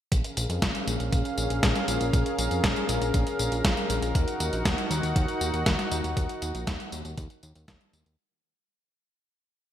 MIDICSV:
0, 0, Header, 1, 4, 480
1, 0, Start_track
1, 0, Key_signature, -6, "minor"
1, 0, Tempo, 504202
1, 112, Time_signature, 4, 2, 24, 8
1, 9260, End_track
2, 0, Start_track
2, 0, Title_t, "Analog synth pad"
2, 0, Program_c, 0, 89
2, 112, Note_on_c, 0, 77, 93
2, 113, Note_on_c, 0, 68, 81
2, 114, Note_on_c, 0, 61, 85
2, 114, Note_on_c, 0, 70, 74
2, 3914, Note_off_c, 0, 77, 0
2, 3915, Note_off_c, 0, 61, 0
2, 3915, Note_off_c, 0, 68, 0
2, 3951, Note_on_c, 0, 63, 87
2, 3951, Note_on_c, 0, 66, 76
2, 3951, Note_on_c, 0, 78, 97
2, 7753, Note_off_c, 0, 63, 0
2, 7754, Note_off_c, 0, 66, 0
2, 7754, Note_off_c, 0, 78, 0
2, 7755, Note_off_c, 0, 70, 0
2, 9260, End_track
3, 0, Start_track
3, 0, Title_t, "Analog synth bass"
3, 0, Program_c, 1, 38
3, 111, Note_on_c, 1, 34, 102
3, 211, Note_off_c, 1, 34, 0
3, 353, Note_on_c, 1, 34, 95
3, 452, Note_off_c, 1, 34, 0
3, 472, Note_on_c, 1, 41, 81
3, 572, Note_off_c, 1, 41, 0
3, 591, Note_on_c, 1, 34, 100
3, 691, Note_off_c, 1, 34, 0
3, 831, Note_on_c, 1, 34, 95
3, 931, Note_off_c, 1, 34, 0
3, 951, Note_on_c, 1, 34, 75
3, 1052, Note_off_c, 1, 34, 0
3, 1071, Note_on_c, 1, 34, 96
3, 1171, Note_off_c, 1, 34, 0
3, 1311, Note_on_c, 1, 34, 95
3, 1411, Note_off_c, 1, 34, 0
3, 1431, Note_on_c, 1, 34, 81
3, 1531, Note_off_c, 1, 34, 0
3, 1551, Note_on_c, 1, 34, 97
3, 1651, Note_off_c, 1, 34, 0
3, 1791, Note_on_c, 1, 34, 96
3, 1891, Note_off_c, 1, 34, 0
3, 1911, Note_on_c, 1, 34, 84
3, 2011, Note_off_c, 1, 34, 0
3, 2031, Note_on_c, 1, 34, 100
3, 2131, Note_off_c, 1, 34, 0
3, 2271, Note_on_c, 1, 34, 93
3, 2371, Note_off_c, 1, 34, 0
3, 2390, Note_on_c, 1, 41, 82
3, 2491, Note_off_c, 1, 41, 0
3, 2510, Note_on_c, 1, 34, 95
3, 2611, Note_off_c, 1, 34, 0
3, 2750, Note_on_c, 1, 34, 96
3, 2851, Note_off_c, 1, 34, 0
3, 2870, Note_on_c, 1, 34, 82
3, 2971, Note_off_c, 1, 34, 0
3, 2991, Note_on_c, 1, 34, 98
3, 3091, Note_off_c, 1, 34, 0
3, 3231, Note_on_c, 1, 34, 93
3, 3331, Note_off_c, 1, 34, 0
3, 3350, Note_on_c, 1, 34, 80
3, 3451, Note_off_c, 1, 34, 0
3, 3470, Note_on_c, 1, 34, 99
3, 3571, Note_off_c, 1, 34, 0
3, 3710, Note_on_c, 1, 34, 95
3, 3811, Note_off_c, 1, 34, 0
3, 3829, Note_on_c, 1, 34, 87
3, 3931, Note_off_c, 1, 34, 0
3, 3950, Note_on_c, 1, 39, 105
3, 4051, Note_off_c, 1, 39, 0
3, 4189, Note_on_c, 1, 39, 93
3, 4290, Note_off_c, 1, 39, 0
3, 4309, Note_on_c, 1, 34, 82
3, 4410, Note_off_c, 1, 34, 0
3, 4430, Note_on_c, 1, 39, 100
3, 4531, Note_off_c, 1, 39, 0
3, 4669, Note_on_c, 1, 39, 93
3, 4770, Note_off_c, 1, 39, 0
3, 4790, Note_on_c, 1, 39, 81
3, 4891, Note_off_c, 1, 39, 0
3, 4911, Note_on_c, 1, 39, 100
3, 5011, Note_off_c, 1, 39, 0
3, 5150, Note_on_c, 1, 39, 91
3, 5251, Note_off_c, 1, 39, 0
3, 5270, Note_on_c, 1, 39, 80
3, 5371, Note_off_c, 1, 39, 0
3, 5391, Note_on_c, 1, 39, 97
3, 5491, Note_off_c, 1, 39, 0
3, 5631, Note_on_c, 1, 39, 94
3, 5731, Note_off_c, 1, 39, 0
3, 5751, Note_on_c, 1, 39, 87
3, 5851, Note_off_c, 1, 39, 0
3, 5871, Note_on_c, 1, 39, 111
3, 5972, Note_off_c, 1, 39, 0
3, 6113, Note_on_c, 1, 39, 95
3, 6212, Note_off_c, 1, 39, 0
3, 6233, Note_on_c, 1, 34, 85
3, 6332, Note_off_c, 1, 34, 0
3, 6351, Note_on_c, 1, 39, 102
3, 6451, Note_off_c, 1, 39, 0
3, 6592, Note_on_c, 1, 39, 94
3, 6692, Note_off_c, 1, 39, 0
3, 6712, Note_on_c, 1, 39, 77
3, 6812, Note_off_c, 1, 39, 0
3, 6831, Note_on_c, 1, 39, 101
3, 6932, Note_off_c, 1, 39, 0
3, 7073, Note_on_c, 1, 39, 92
3, 7172, Note_off_c, 1, 39, 0
3, 7192, Note_on_c, 1, 39, 83
3, 7292, Note_off_c, 1, 39, 0
3, 7311, Note_on_c, 1, 39, 97
3, 7411, Note_off_c, 1, 39, 0
3, 7552, Note_on_c, 1, 39, 97
3, 7652, Note_off_c, 1, 39, 0
3, 7673, Note_on_c, 1, 39, 88
3, 7772, Note_off_c, 1, 39, 0
3, 9260, End_track
4, 0, Start_track
4, 0, Title_t, "Drums"
4, 112, Note_on_c, 9, 36, 116
4, 113, Note_on_c, 9, 42, 91
4, 113, Note_on_c, 9, 54, 34
4, 207, Note_off_c, 9, 36, 0
4, 208, Note_off_c, 9, 42, 0
4, 208, Note_off_c, 9, 54, 0
4, 232, Note_on_c, 9, 42, 41
4, 232, Note_on_c, 9, 54, 20
4, 328, Note_off_c, 9, 42, 0
4, 328, Note_off_c, 9, 54, 0
4, 353, Note_on_c, 9, 42, 65
4, 353, Note_on_c, 9, 54, 68
4, 448, Note_off_c, 9, 42, 0
4, 448, Note_off_c, 9, 54, 0
4, 473, Note_on_c, 9, 42, 42
4, 473, Note_on_c, 9, 54, 27
4, 569, Note_off_c, 9, 42, 0
4, 569, Note_off_c, 9, 54, 0
4, 591, Note_on_c, 9, 36, 117
4, 593, Note_on_c, 9, 38, 119
4, 593, Note_on_c, 9, 42, 98
4, 593, Note_on_c, 9, 54, 37
4, 687, Note_off_c, 9, 36, 0
4, 688, Note_off_c, 9, 38, 0
4, 688, Note_off_c, 9, 42, 0
4, 688, Note_off_c, 9, 54, 0
4, 713, Note_on_c, 9, 42, 42
4, 713, Note_on_c, 9, 54, 20
4, 808, Note_off_c, 9, 42, 0
4, 808, Note_off_c, 9, 54, 0
4, 833, Note_on_c, 9, 42, 68
4, 833, Note_on_c, 9, 54, 65
4, 928, Note_off_c, 9, 42, 0
4, 928, Note_off_c, 9, 54, 0
4, 952, Note_on_c, 9, 42, 39
4, 952, Note_on_c, 9, 54, 26
4, 1047, Note_off_c, 9, 42, 0
4, 1047, Note_off_c, 9, 54, 0
4, 1071, Note_on_c, 9, 36, 110
4, 1071, Note_on_c, 9, 42, 89
4, 1071, Note_on_c, 9, 54, 37
4, 1166, Note_off_c, 9, 36, 0
4, 1166, Note_off_c, 9, 42, 0
4, 1166, Note_off_c, 9, 54, 0
4, 1191, Note_on_c, 9, 42, 37
4, 1191, Note_on_c, 9, 54, 18
4, 1287, Note_off_c, 9, 42, 0
4, 1287, Note_off_c, 9, 54, 0
4, 1310, Note_on_c, 9, 42, 37
4, 1310, Note_on_c, 9, 54, 63
4, 1405, Note_off_c, 9, 42, 0
4, 1405, Note_off_c, 9, 54, 0
4, 1431, Note_on_c, 9, 42, 40
4, 1431, Note_on_c, 9, 54, 29
4, 1526, Note_off_c, 9, 42, 0
4, 1526, Note_off_c, 9, 54, 0
4, 1551, Note_on_c, 9, 36, 127
4, 1551, Note_on_c, 9, 38, 116
4, 1551, Note_on_c, 9, 42, 96
4, 1551, Note_on_c, 9, 54, 38
4, 1646, Note_off_c, 9, 36, 0
4, 1646, Note_off_c, 9, 38, 0
4, 1646, Note_off_c, 9, 42, 0
4, 1646, Note_off_c, 9, 54, 0
4, 1671, Note_on_c, 9, 38, 37
4, 1671, Note_on_c, 9, 42, 43
4, 1671, Note_on_c, 9, 54, 19
4, 1766, Note_off_c, 9, 38, 0
4, 1766, Note_off_c, 9, 42, 0
4, 1766, Note_off_c, 9, 54, 0
4, 1790, Note_on_c, 9, 42, 70
4, 1790, Note_on_c, 9, 54, 64
4, 1885, Note_off_c, 9, 42, 0
4, 1885, Note_off_c, 9, 54, 0
4, 1911, Note_on_c, 9, 42, 43
4, 1911, Note_on_c, 9, 54, 29
4, 2006, Note_off_c, 9, 42, 0
4, 2006, Note_off_c, 9, 54, 0
4, 2031, Note_on_c, 9, 36, 123
4, 2033, Note_on_c, 9, 42, 90
4, 2033, Note_on_c, 9, 54, 36
4, 2126, Note_off_c, 9, 36, 0
4, 2128, Note_off_c, 9, 42, 0
4, 2128, Note_off_c, 9, 54, 0
4, 2151, Note_on_c, 9, 42, 41
4, 2151, Note_on_c, 9, 54, 19
4, 2246, Note_off_c, 9, 42, 0
4, 2246, Note_off_c, 9, 54, 0
4, 2271, Note_on_c, 9, 42, 68
4, 2271, Note_on_c, 9, 54, 64
4, 2366, Note_off_c, 9, 42, 0
4, 2366, Note_off_c, 9, 54, 0
4, 2390, Note_on_c, 9, 42, 38
4, 2390, Note_on_c, 9, 54, 29
4, 2485, Note_off_c, 9, 42, 0
4, 2485, Note_off_c, 9, 54, 0
4, 2511, Note_on_c, 9, 36, 127
4, 2511, Note_on_c, 9, 38, 127
4, 2511, Note_on_c, 9, 42, 93
4, 2511, Note_on_c, 9, 54, 39
4, 2606, Note_off_c, 9, 36, 0
4, 2606, Note_off_c, 9, 38, 0
4, 2606, Note_off_c, 9, 42, 0
4, 2606, Note_off_c, 9, 54, 0
4, 2631, Note_on_c, 9, 42, 40
4, 2631, Note_on_c, 9, 54, 19
4, 2726, Note_off_c, 9, 42, 0
4, 2726, Note_off_c, 9, 54, 0
4, 2750, Note_on_c, 9, 42, 69
4, 2750, Note_on_c, 9, 54, 69
4, 2846, Note_off_c, 9, 42, 0
4, 2846, Note_off_c, 9, 54, 0
4, 2871, Note_on_c, 9, 42, 40
4, 2871, Note_on_c, 9, 54, 28
4, 2967, Note_off_c, 9, 42, 0
4, 2967, Note_off_c, 9, 54, 0
4, 2990, Note_on_c, 9, 42, 89
4, 2990, Note_on_c, 9, 54, 35
4, 2991, Note_on_c, 9, 36, 120
4, 3085, Note_off_c, 9, 42, 0
4, 3085, Note_off_c, 9, 54, 0
4, 3086, Note_off_c, 9, 36, 0
4, 3110, Note_on_c, 9, 42, 39
4, 3110, Note_on_c, 9, 54, 18
4, 3205, Note_off_c, 9, 42, 0
4, 3205, Note_off_c, 9, 54, 0
4, 3231, Note_on_c, 9, 42, 38
4, 3231, Note_on_c, 9, 54, 67
4, 3326, Note_off_c, 9, 42, 0
4, 3326, Note_off_c, 9, 54, 0
4, 3350, Note_on_c, 9, 42, 40
4, 3350, Note_on_c, 9, 54, 28
4, 3445, Note_off_c, 9, 42, 0
4, 3445, Note_off_c, 9, 54, 0
4, 3470, Note_on_c, 9, 36, 124
4, 3471, Note_on_c, 9, 38, 124
4, 3471, Note_on_c, 9, 42, 92
4, 3471, Note_on_c, 9, 54, 40
4, 3566, Note_off_c, 9, 36, 0
4, 3567, Note_off_c, 9, 38, 0
4, 3567, Note_off_c, 9, 42, 0
4, 3567, Note_off_c, 9, 54, 0
4, 3591, Note_on_c, 9, 42, 41
4, 3591, Note_on_c, 9, 54, 18
4, 3686, Note_off_c, 9, 42, 0
4, 3686, Note_off_c, 9, 54, 0
4, 3711, Note_on_c, 9, 42, 70
4, 3711, Note_on_c, 9, 54, 64
4, 3806, Note_off_c, 9, 42, 0
4, 3806, Note_off_c, 9, 54, 0
4, 3832, Note_on_c, 9, 42, 42
4, 3832, Note_on_c, 9, 54, 30
4, 3927, Note_off_c, 9, 42, 0
4, 3927, Note_off_c, 9, 54, 0
4, 3950, Note_on_c, 9, 36, 122
4, 3952, Note_on_c, 9, 42, 84
4, 3952, Note_on_c, 9, 54, 36
4, 4045, Note_off_c, 9, 36, 0
4, 4047, Note_off_c, 9, 42, 0
4, 4047, Note_off_c, 9, 54, 0
4, 4071, Note_on_c, 9, 42, 38
4, 4071, Note_on_c, 9, 54, 19
4, 4166, Note_off_c, 9, 42, 0
4, 4166, Note_off_c, 9, 54, 0
4, 4191, Note_on_c, 9, 42, 67
4, 4191, Note_on_c, 9, 54, 69
4, 4287, Note_off_c, 9, 42, 0
4, 4287, Note_off_c, 9, 54, 0
4, 4311, Note_on_c, 9, 42, 36
4, 4311, Note_on_c, 9, 54, 28
4, 4406, Note_off_c, 9, 42, 0
4, 4406, Note_off_c, 9, 54, 0
4, 4430, Note_on_c, 9, 36, 126
4, 4431, Note_on_c, 9, 38, 126
4, 4431, Note_on_c, 9, 42, 95
4, 4431, Note_on_c, 9, 54, 39
4, 4525, Note_off_c, 9, 36, 0
4, 4526, Note_off_c, 9, 38, 0
4, 4526, Note_off_c, 9, 42, 0
4, 4526, Note_off_c, 9, 54, 0
4, 4551, Note_on_c, 9, 42, 39
4, 4551, Note_on_c, 9, 54, 20
4, 4647, Note_off_c, 9, 42, 0
4, 4647, Note_off_c, 9, 54, 0
4, 4672, Note_on_c, 9, 42, 63
4, 4672, Note_on_c, 9, 54, 70
4, 4767, Note_off_c, 9, 42, 0
4, 4767, Note_off_c, 9, 54, 0
4, 4792, Note_on_c, 9, 42, 37
4, 4792, Note_on_c, 9, 54, 30
4, 4887, Note_off_c, 9, 42, 0
4, 4887, Note_off_c, 9, 54, 0
4, 4911, Note_on_c, 9, 36, 121
4, 4912, Note_on_c, 9, 42, 89
4, 4912, Note_on_c, 9, 54, 36
4, 5006, Note_off_c, 9, 36, 0
4, 5007, Note_off_c, 9, 42, 0
4, 5007, Note_off_c, 9, 54, 0
4, 5031, Note_on_c, 9, 42, 36
4, 5031, Note_on_c, 9, 54, 18
4, 5126, Note_off_c, 9, 42, 0
4, 5126, Note_off_c, 9, 54, 0
4, 5151, Note_on_c, 9, 42, 36
4, 5151, Note_on_c, 9, 54, 70
4, 5246, Note_off_c, 9, 42, 0
4, 5246, Note_off_c, 9, 54, 0
4, 5271, Note_on_c, 9, 42, 37
4, 5271, Note_on_c, 9, 54, 28
4, 5366, Note_off_c, 9, 42, 0
4, 5366, Note_off_c, 9, 54, 0
4, 5391, Note_on_c, 9, 36, 125
4, 5391, Note_on_c, 9, 38, 127
4, 5391, Note_on_c, 9, 42, 92
4, 5391, Note_on_c, 9, 54, 38
4, 5486, Note_off_c, 9, 36, 0
4, 5486, Note_off_c, 9, 38, 0
4, 5486, Note_off_c, 9, 42, 0
4, 5486, Note_off_c, 9, 54, 0
4, 5512, Note_on_c, 9, 38, 39
4, 5512, Note_on_c, 9, 42, 37
4, 5512, Note_on_c, 9, 54, 20
4, 5607, Note_off_c, 9, 38, 0
4, 5607, Note_off_c, 9, 42, 0
4, 5607, Note_off_c, 9, 54, 0
4, 5631, Note_on_c, 9, 42, 64
4, 5631, Note_on_c, 9, 54, 68
4, 5726, Note_off_c, 9, 42, 0
4, 5726, Note_off_c, 9, 54, 0
4, 5753, Note_on_c, 9, 42, 39
4, 5753, Note_on_c, 9, 54, 30
4, 5848, Note_off_c, 9, 42, 0
4, 5848, Note_off_c, 9, 54, 0
4, 5871, Note_on_c, 9, 36, 123
4, 5872, Note_on_c, 9, 42, 86
4, 5872, Note_on_c, 9, 54, 36
4, 5966, Note_off_c, 9, 36, 0
4, 5967, Note_off_c, 9, 42, 0
4, 5967, Note_off_c, 9, 54, 0
4, 5992, Note_on_c, 9, 42, 39
4, 5992, Note_on_c, 9, 54, 20
4, 6087, Note_off_c, 9, 42, 0
4, 6087, Note_off_c, 9, 54, 0
4, 6112, Note_on_c, 9, 42, 63
4, 6112, Note_on_c, 9, 54, 72
4, 6207, Note_off_c, 9, 42, 0
4, 6207, Note_off_c, 9, 54, 0
4, 6233, Note_on_c, 9, 42, 39
4, 6233, Note_on_c, 9, 54, 30
4, 6328, Note_off_c, 9, 42, 0
4, 6328, Note_off_c, 9, 54, 0
4, 6351, Note_on_c, 9, 36, 124
4, 6353, Note_on_c, 9, 38, 121
4, 6353, Note_on_c, 9, 42, 91
4, 6353, Note_on_c, 9, 54, 42
4, 6446, Note_off_c, 9, 36, 0
4, 6448, Note_off_c, 9, 38, 0
4, 6448, Note_off_c, 9, 42, 0
4, 6448, Note_off_c, 9, 54, 0
4, 6473, Note_on_c, 9, 42, 38
4, 6473, Note_on_c, 9, 54, 20
4, 6569, Note_off_c, 9, 42, 0
4, 6569, Note_off_c, 9, 54, 0
4, 6591, Note_on_c, 9, 42, 64
4, 6591, Note_on_c, 9, 54, 75
4, 6687, Note_off_c, 9, 42, 0
4, 6687, Note_off_c, 9, 54, 0
4, 6711, Note_on_c, 9, 42, 37
4, 6711, Note_on_c, 9, 54, 31
4, 6806, Note_off_c, 9, 42, 0
4, 6806, Note_off_c, 9, 54, 0
4, 6831, Note_on_c, 9, 36, 127
4, 6831, Note_on_c, 9, 42, 82
4, 6831, Note_on_c, 9, 54, 41
4, 6926, Note_off_c, 9, 36, 0
4, 6926, Note_off_c, 9, 42, 0
4, 6926, Note_off_c, 9, 54, 0
4, 6950, Note_on_c, 9, 42, 35
4, 6950, Note_on_c, 9, 54, 18
4, 7046, Note_off_c, 9, 42, 0
4, 7046, Note_off_c, 9, 54, 0
4, 7072, Note_on_c, 9, 42, 36
4, 7072, Note_on_c, 9, 54, 70
4, 7167, Note_off_c, 9, 42, 0
4, 7167, Note_off_c, 9, 54, 0
4, 7192, Note_on_c, 9, 42, 37
4, 7192, Note_on_c, 9, 54, 31
4, 7287, Note_off_c, 9, 42, 0
4, 7287, Note_off_c, 9, 54, 0
4, 7311, Note_on_c, 9, 36, 127
4, 7313, Note_on_c, 9, 38, 125
4, 7313, Note_on_c, 9, 42, 91
4, 7313, Note_on_c, 9, 54, 40
4, 7406, Note_off_c, 9, 36, 0
4, 7408, Note_off_c, 9, 38, 0
4, 7408, Note_off_c, 9, 42, 0
4, 7408, Note_off_c, 9, 54, 0
4, 7433, Note_on_c, 9, 42, 38
4, 7433, Note_on_c, 9, 54, 20
4, 7528, Note_off_c, 9, 42, 0
4, 7528, Note_off_c, 9, 54, 0
4, 7553, Note_on_c, 9, 42, 67
4, 7553, Note_on_c, 9, 54, 71
4, 7649, Note_off_c, 9, 42, 0
4, 7649, Note_off_c, 9, 54, 0
4, 7675, Note_on_c, 9, 42, 37
4, 7675, Note_on_c, 9, 54, 31
4, 7770, Note_off_c, 9, 42, 0
4, 7770, Note_off_c, 9, 54, 0
4, 9260, End_track
0, 0, End_of_file